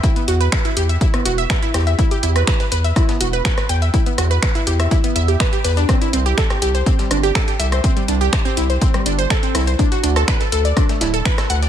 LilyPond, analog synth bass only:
\new Staff \with { instrumentName = "Analog synth bass" } { \clef bass \time 4/4 \key e \minor \tempo 4 = 123 r8 e,8 r8 e,8 r8 e,,8 r8 e,8 | r8 e,8 r8 e,8 r8 e,,8 r8 e,8 | r8 e,8 r8 e,8 r8 e,8 r8 e,8 | r8 c,8 r8 c,8 r8 g,,8 r8 c,8 |
r8 c,8 r8 c,8 r8 g,,8 r8 c,8 | r8 d,8 r8 d,8 r8 d,,8 r8 d,8 | }